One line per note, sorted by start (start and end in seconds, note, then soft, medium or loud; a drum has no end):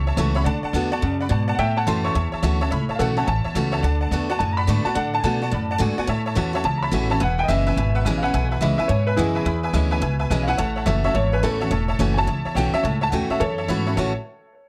0.00 0.16 C#2 medium
0.00 0.44 E2 medium
0.00 0.62 C#6 medium
0.07 0.14 C#5 medium
0.07 0.14 E5 medium
0.07 0.14 A5 medium
0.17 0.45 C#2 medium
0.17 0.35 E3 medium
0.17 0.35 A3 medium
0.17 0.35 C#4 loud
0.17 0.33 F#4 loud
0.17 0.28 C#5 medium
0.17 0.29 E5 medium
0.17 0.29 A5 loud
0.35 0.46 C#4 soft
0.35 0.45 F#4 medium
0.35 0.42 C#5 loud
0.35 0.42 E5 loud
0.35 0.43 B5 loud
0.44 0.62 D2 medium
0.44 0.73 D3 medium
0.44 0.56 D5 loud
0.44 0.56 F#5 loud
0.44 0.57 A5 loud
0.63 0.70 D5 medium
0.63 0.70 F#5 medium
0.63 0.71 A5 medium
0.63 muted upright bass stroke soft
0.73 1.01 E2 loud
0.73 0.91 D3 medium
0.73 0.92 A3 medium
0.73 0.92 B3 medium
0.73 0.91 F#4 medium
0.73 0.85 D5 medium
0.73 0.85 F#5 medium
0.73 0.85 A5 loud
0.92 1.03 B3 medium
0.92 1.02 F#4 medium
0.92 0.98 D5 loud
0.92 0.98 F#5 loud
0.92 0.99 A5 loud
1.01 1.30 F#2 medium
1.01 1.29 C#3 medium
1.01 1.13 D5 medium
1.01 1.13 F#5 medium
1.01 1.14 A5 medium
1.21 1.27 D5 medium
1.21 1.27 F#5 medium
1.21 1.27 B5 loud
1.29 1.58 G#2 medium
1.29 1.57 B2 medium
1.29 1.41 D5 medium
1.29 1.41 F#5 medium
1.29 1.42 A5 loud
1.48 1.54 D5 loud
1.48 1.55 F#5 loud
1.48 1.55 A5 loud
1.55 1.86 A2 medium
1.55 2.13 A2 medium
1.55 1.75 E5 medium
1.55 1.57 F#5 medium
1.59 1.69 C#5 medium
1.59 1.70 E5 medium
1.59 1.76 G5 loud
1.59 1.70 A5 loud
1.77 1.83 C#5 medium
1.77 1.83 E5 medium
1.77 1.87 F#5 medium
1.77 1.86 A5 medium
1.77 1.84 A5 medium
1.86 2.14 F#2 medium
1.86 2.14 E3 medium
1.86 2.14 A3 loud
1.86 2.14 C#4 medium
1.86 2.15 F#4 medium
1.86 1.97 C#5 medium
1.86 1.98 E5 medium
1.86 2.04 A5 medium
1.86 1.98 A5 medium
1.86 2.05 C6 medium
2.04 2.11 C#5 medium
2.04 2.11 E5 medium
2.04 2.12 A5 loud
2.04 2.86 C#6 medium
2.14 2.32 E2 medium
2.14 2.69 E2 medium
2.14 2.25 C#5 medium
2.14 2.26 E5 medium
2.14 2.26 A5 medium
2.32 2.39 C#5 medium
2.32 2.39 E5 medium
2.32 2.40 A5 medium
2.32 muted upright bass stroke soft
2.42 2.70 D2 medium
2.42 2.60 E3 medium
2.42 2.60 A3 loud
2.42 2.61 C#4 loud
2.42 2.60 F#4 loud
2.42 2.53 C#5 medium
2.42 2.54 E5 medium
2.42 2.54 A5 medium
2.61 2.71 C#4 soft
2.61 2.71 F#4 medium
2.61 2.67 C#5 loud
2.61 2.68 E5 loud
2.61 2.68 A5 loud
2.71 2.88 C#2 medium
2.71 3.26 A2 medium
2.71 2.82 C#5 loud
2.71 2.82 E5 loud
2.71 2.82 B5 loud
2.89 2.95 C#5 medium
2.89 2.95 E5 medium
2.89 2.96 A5 loud
2.89 muted upright bass stroke soft
2.95 3.16 A4 medium
2.95 3.10 C#5 medium
2.95 2.98 F5 medium
2.99 3.26 B1 loud
2.99 3.17 E3 medium
2.99 3.17 A3 medium
2.99 3.17 C#4 medium
2.99 3.15 F#4 loud
2.99 3.10 E5 medium
2.99 3.16 F#5 medium
2.99 3.10 A5 medium
3.17 3.28 C#4 soft
3.17 3.27 F#4 medium
3.17 3.23 C#5 medium
3.17 3.24 E5 medium
3.17 3.27 F#5 medium
3.17 3.27 A5 medium
3.17 3.24 A5 loud
3.24 3.44 A1 medium
3.24 3.82 E2 medium
3.24 3.38 C#5 medium
3.24 3.38 E5 medium
3.24 3.27 G#5 medium
3.24 3.55 A5 loud
3.28 3.38 A5 medium
3.44 3.51 C#5 medium
3.44 3.51 E5 medium
3.44 3.52 A5 medium
3.44 muted upright bass stroke soft
3.55 3.82 C#2 medium
3.55 3.82 E3 medium
3.55 3.83 A3 medium
3.55 3.83 C#4 medium
3.55 3.83 F#4 loud
3.55 3.66 C#5 medium
3.55 3.66 E5 medium
3.55 3.67 A5 medium
3.72 3.79 C#5 loud
3.72 3.79 E5 loud
3.72 3.80 A5 loud
3.83 4.11 D2 medium
3.83 4.11 D3 medium
3.83 3.94 D5 loud
3.83 3.94 F#5 loud
3.83 3.95 A5 loud
4.01 4.07 D5 medium
4.01 4.08 F#5 medium
4.01 4.08 A5 loud
4.11 4.39 E2 loud
4.11 4.29 D3 medium
4.11 4.29 A3 medium
4.11 4.30 B3 loud
4.11 4.28 F#4 medium
4.11 4.22 D5 medium
4.11 4.23 F#5 medium
4.11 4.23 A5 medium
4.30 4.40 B3 medium
4.30 4.39 F#4 medium
4.30 4.36 D5 loud
4.30 4.36 F#5 loud
4.30 4.37 A5 loud
4.39 4.67 F#2 medium
4.39 4.94 A2 medium
4.39 4.50 D5 medium
4.39 4.51 F#5 medium
4.39 4.51 G#5 medium
4.39 4.57 A5 loud
4.53 4.55 A#5 medium
4.57 4.64 D5 medium
4.57 4.64 F#5 medium
4.57 4.65 A5 medium
4.57 4.85 B5 medium
4.67 4.84 G#2 medium
4.67 4.85 D3 loud
4.67 4.85 A3 loud
4.67 4.85 B3 loud
4.67 4.84 F#4 loud
4.67 4.79 D5 medium
4.67 4.79 F#5 medium
4.67 4.80 A5 medium
4.85 4.96 B3 medium
4.85 4.96 F#4 medium
4.85 4.92 D5 loud
4.85 4.92 F#5 medium
4.85 4.95 A5 loud
4.85 4.92 A5 loud
4.85 muted upright bass stroke soft
4.95 5.23 A2 medium
4.95 5.22 D3 medium
4.95 5.06 D5 loud
4.95 5.13 F#5 medium
4.95 5.07 F#5 medium
4.95 5.07 A5 loud
5.14 5.20 D5 medium
5.14 5.20 F#5 medium
5.14 5.23 A5 loud
5.14 5.21 A5 medium
5.20 5.51 B2 loud
5.20 5.41 D3 medium
5.20 5.41 A3 medium
5.20 5.23 G#5 medium
5.24 5.42 B3 medium
5.24 5.40 F#4 medium
5.24 5.35 D5 medium
5.24 5.35 F#5 medium
5.24 5.36 G#5 medium
5.24 5.79 A5 loud
5.42 5.53 B3 medium
5.42 5.52 F#4 medium
5.42 5.48 D5 loud
5.42 5.49 F#5 medium
5.42 5.49 A5 loud
5.51 5.79 F#2 loud
5.51 6.06 A2 medium
5.51 5.63 D5 medium
5.51 5.64 F#5 medium
5.51 5.64 B5 medium
5.71 5.77 D5 medium
5.71 5.77 F#5 medium
5.71 5.77 A5 loud
5.78 5.97 G#2 loud
5.78 5.96 D3 loud
5.78 5.97 A3 loud
5.78 5.97 B3 medium
5.78 5.97 F#4 loud
5.78 5.91 D5 medium
5.78 5.91 F#5 medium
5.78 5.92 G#5 loud
5.98 6.09 B3 soft
5.98 6.08 F#4 medium
5.98 6.04 D5 loud
5.98 6.04 F#5 loud
5.98 6.05 G#5 loud
5.98 muted upright bass stroke soft
6.07 6.62 A2 medium
6.07 6.35 A2 medium
6.07 6.19 C#5 loud
6.07 6.19 E5 loud
6.07 6.20 A5 loud
6.26 6.32 C#5 medium
6.26 6.33 E5 medium
6.26 6.33 A5 loud
6.35 6.64 E2 loud
6.35 6.53 E3 medium
6.35 6.53 A3 loud
6.35 6.54 C#4 medium
6.35 6.52 F#4 loud
6.35 6.47 C#5 medium
6.35 6.47 E5 medium
6.35 6.48 A5 loud
6.53 6.64 C#4 medium
6.53 6.64 F#4 medium
6.53 6.61 C#5 loud
6.53 6.61 E5 loud
6.53 6.62 A5 loud
6.64 6.91 C#2 medium
6.64 7.18 E2 medium
6.64 6.76 C#5 medium
6.64 6.76 E5 medium
6.64 6.82 A5 loud
6.64 6.77 A5 medium
6.78 6.80 A#5 medium
6.83 6.89 C#5 medium
6.83 6.89 E5 medium
6.83 6.90 A5 medium
6.83 7.10 B5 medium
6.91 7.20 A1 medium
6.91 7.09 E3 loud
6.91 7.10 A3 loud
6.91 7.10 C#4 loud
6.91 7.09 F#4 loud
6.91 7.04 C#5 medium
6.91 7.04 E5 medium
6.91 7.05 G#5 medium
7.10 7.21 C#4 soft
7.10 7.20 F#4 medium
7.10 7.17 C#5 loud
7.10 7.17 E5 medium
7.10 7.21 A5 medium
7.10 7.18 A5 loud
7.20 7.48 E1 medium
7.20 7.75 E2 medium
7.20 7.31 B4 loud
7.20 7.31 E5 medium
7.20 7.39 F#5 medium
7.20 7.32 G#5 loud
7.38 7.45 B4 medium
7.38 7.45 E5 medium
7.38 7.49 G5 loud
7.38 7.46 G#5 medium
7.43 7.46 D#5 medium
7.48 7.76 F#1 medium
7.48 7.66 E3 medium
7.48 7.66 G#3 medium
7.48 7.66 C#4 loud
7.48 7.65 E4 loud
7.48 7.59 B4 medium
7.48 8.03 E5 loud
7.48 7.60 E5 medium
7.48 7.60 G#5 medium
7.67 7.77 C#4 medium
7.67 7.77 E4 medium
7.67 7.73 B4 loud
7.67 7.73 E5 medium
7.67 7.74 G#5 loud
7.77 8.04 G#1 medium
7.77 8.32 B2 medium
7.77 7.88 B4 medium
7.77 7.88 E5 medium
7.77 7.89 G#5 medium
7.95 8.01 B4 medium
7.95 8.01 E5 medium
7.95 8.02 F#5 loud
8.05 8.33 A1 medium
8.05 8.23 E3 medium
8.05 8.23 G#3 loud
8.05 8.23 C#4 loud
8.05 8.22 E4 loud
8.05 8.16 B4 medium
8.05 8.16 E5 medium
8.05 8.17 G#5 loud
8.18 8.20 F5 medium
8.23 8.34 C#4 medium
8.23 8.33 E4 medium
8.23 8.29 B4 loud
8.23 8.29 E5 medium
8.23 8.60 F#5 medium
8.23 8.30 G#5 loud
8.33 8.61 B1 medium
8.33 8.88 E2 medium
8.33 8.44 B4 medium
8.33 8.44 E5 medium
8.33 8.45 G#5 loud
8.51 8.57 B4 medium
8.51 8.58 E5 medium
8.51 8.58 G#5 medium
8.61 8.78 C#2 medium
8.61 8.78 E3 medium
8.61 8.79 G#3 medium
8.61 8.79 C#4 medium
8.61 8.78 E4 loud
8.61 8.72 B4 medium
8.61 8.76 E5 medium
8.61 8.73 E5 medium
8.61 8.73 B5 medium
8.78 8.90 C#4 medium
8.78 8.89 E4 medium
8.78 8.85 B4 loud
8.78 8.89 E5 medium
8.78 8.85 E5 medium
8.78 8.86 G#5 loud
8.78 muted upright bass stroke soft
8.88 9.17 G#2 loud
8.88 9.44 B2 medium
8.88 9.00 B4 medium
8.88 9.06 C#5 loud
8.88 9.01 E5 medium
8.88 9.01 G#5 medium
9.07 9.17 B4 medium
9.07 9.14 B4 medium
9.07 9.14 E5 medium
9.07 9.14 G#5 medium
9.16 9.45 F#2 medium
9.16 9.45 E3 loud
9.16 9.45 G#3 loud
9.16 9.46 C#4 medium
9.16 9.69 E4 medium
9.16 9.46 E4 loud
9.16 9.72 G#4 medium
9.16 9.28 B4 medium
9.16 9.28 E5 medium
9.16 9.29 F#5 medium
9.35 9.42 B4 medium
9.35 9.42 E5 medium
9.35 9.43 G#5 loud
9.45 9.73 E2 medium
9.45 10.00 E2 medium
9.45 9.56 B4 medium
9.45 9.57 E5 medium
9.45 9.57 B5 loud
9.63 9.70 B4 medium
9.63 9.70 E5 medium
9.63 9.71 G#5 loud
9.73 10.01 D2 loud
9.73 10.01 E3 medium
9.73 10.01 G#3 medium
9.73 10.01 C#4 loud
9.73 10.02 E4 loud
9.73 9.84 B4 medium
9.73 9.85 E5 medium
9.73 9.85 G#5 loud
9.91 9.98 B4 loud
9.91 9.98 E5 loud
9.91 9.98 G#5 loud
10.01 10.30 C#2 medium
10.01 10.56 B2 medium
10.01 10.12 B4 medium
10.01 10.13 E5 medium
10.01 10.13 G#5 loud
10.19 10.26 B4 loud
10.19 10.26 E5 medium
10.19 10.27 G#5 loud
10.30 10.58 B1 medium
10.30 10.48 E3 medium
10.30 10.48 G#3 loud
10.30 10.48 C#4 loud
10.30 10.47 E4 loud
10.30 10.41 B4 medium
10.30 10.41 E5 medium
10.30 10.42 G#5 loud
10.43 10.45 F5 medium
10.47 10.59 C#4 soft
10.47 10.58 E4 medium
10.47 10.54 B4 loud
10.47 10.55 E5 medium
10.47 10.85 F#5 loud
10.47 10.55 G#5 loud
10.57 10.86 A1 medium
10.57 11.13 A2 loud
10.57 10.69 C#5 medium
10.57 10.69 E5 medium
10.57 10.70 A5 loud
10.76 10.82 C#5 medium
10.76 10.83 E5 medium
10.76 10.83 A5 medium
10.86 11.14 F#1 medium
10.86 11.03 E3 medium
10.86 11.04 A3 medium
10.86 11.04 C#4 loud
10.86 11.03 F#4 medium
10.86 10.97 C#5 medium
10.86 11.03 E5 medium
10.86 10.98 E5 medium
10.86 10.98 A5 medium
11.04 11.15 C#4 soft
11.04 11.14 F#4 medium
11.04 11.11 C#5 loud
11.04 11.15 E5 loud
11.04 11.12 E5 medium
11.04 11.12 A5 loud
11.14 11.42 G#1 medium
11.14 11.69 E2 medium
11.14 11.25 C#5 medium
11.14 11.33 C#5 loud
11.14 11.26 E5 medium
11.14 11.26 A5 medium
11.32 11.43 B4 medium
11.32 11.39 C#5 medium
11.32 11.39 E5 medium
11.32 11.40 G#5 medium
11.43 11.70 A1 medium
11.43 11.60 E3 loud
11.43 11.60 A3 medium
11.43 11.61 C#4 medium
11.43 11.60 F#4 loud
11.43 11.98 A4 medium
11.43 11.54 C#5 medium
11.43 11.54 E5 medium
11.43 11.55 B5 medium
11.60 11.72 C#4 medium
11.60 11.71 F#4 medium
11.60 11.67 C#5 medium
11.60 11.68 E5 medium
11.60 11.68 A5 loud
11.71 11.98 E1 medium
11.71 12.25 A2 medium
11.71 11.82 C#5 loud
11.71 11.82 E5 medium
11.71 11.83 A5 loud
11.88 11.95 C#5 medium
11.88 11.95 E5 medium
11.88 11.96 A5 loud
11.99 12.26 F#1 loud
11.99 12.16 E3 medium
11.99 12.17 A3 loud
11.99 12.17 C#4 loud
11.99 12.16 F#4 medium
11.99 12.10 C#5 medium
11.99 12.11 E5 medium
11.99 12.11 G#5 loud
12.14 12.27 F#4 medium
12.14 12.24 C#5 loud
12.14 12.16 G#5 medium
12.18 12.28 C#4 soft
12.18 12.24 E5 medium
12.18 12.55 A5 loud
12.18 12.24 A5 loud
12.27 12.44 C#2 medium
12.27 12.82 E2 medium
12.27 12.38 C#5 medium
12.27 12.39 E5 medium
12.27 12.39 A5 medium
12.45 12.52 C#5 medium
12.45 12.52 E5 medium
12.45 12.52 A5 medium
12.45 muted upright bass stroke soft
12.55 12.72 B1 medium
12.55 12.73 E3 medium
12.55 12.74 A3 medium
12.55 12.74 C#4 medium
12.55 12.73 F#4 loud
12.55 12.66 C#5 medium
12.55 12.67 E5 medium
12.55 12.74 G5 medium
12.55 12.67 A5 medium
12.73 12.85 C#4 soft
12.73 12.84 F#4 medium
12.73 12.80 C#5 medium
12.73 12.84 E5 loud
12.73 12.81 E5 medium
12.73 12.81 A5 loud
12.73 muted upright bass stroke soft
12.83 13.11 C#2 medium
12.83 13.39 A2 medium
12.83 12.94 C#5 medium
12.83 12.95 E5 medium
12.83 12.95 A5 loud
13.01 13.08 C#5 medium
13.01 13.08 E5 medium
13.01 13.09 A5 loud
13.01 13.13 A5 loud
13.09 13.29 E2 medium
13.09 13.29 E3 medium
13.09 13.30 A3 medium
13.09 13.23 C#5 medium
13.09 13.11 F#5 medium
13.13 13.30 C#4 medium
13.13 13.29 F#4 medium
13.13 13.23 E5 medium
13.13 13.30 G5 medium
13.13 13.24 G#5 medium
13.30 13.41 C#4 medium
13.30 13.40 F#4 medium
13.30 13.36 C#5 medium
13.30 13.40 E5 loud
13.30 13.37 E5 medium
13.30 13.37 A5 medium
13.30 muted upright bass stroke soft
13.40 13.95 E2 medium
13.40 13.68 F#2 medium
13.40 13.93 A4 loud
13.40 13.51 C#5 medium
13.40 13.95 C#5 loud
13.40 13.51 E5 medium
13.40 13.52 A5 medium
13.58 13.65 C#5 medium
13.58 13.65 E5 medium
13.58 13.65 A5 medium
13.68 13.96 G#2 medium
13.68 13.86 E3 medium
13.68 13.86 A3 medium
13.68 13.87 C#4 medium
13.68 13.85 F#4 loud
13.68 13.79 C#5 loud
13.68 13.80 E5 medium
13.68 13.80 B5 loud
13.87 13.97 C#4 soft
13.87 13.97 F#4 medium
13.87 13.93 C#5 medium
13.87 13.93 E5 medium
13.87 13.94 B5 medium
13.97 14.14 A1 medium
13.97 14.11 A2 medium
13.97 14.12 E3 medium
13.97 14.12 A3 medium
13.97 14.12 C#4 medium
13.97 14.12 F#4 loud
13.97 14.13 C#5 medium
13.97 14.14 C#5 medium
13.97 14.14 E5 medium
13.97 14.14 A5 medium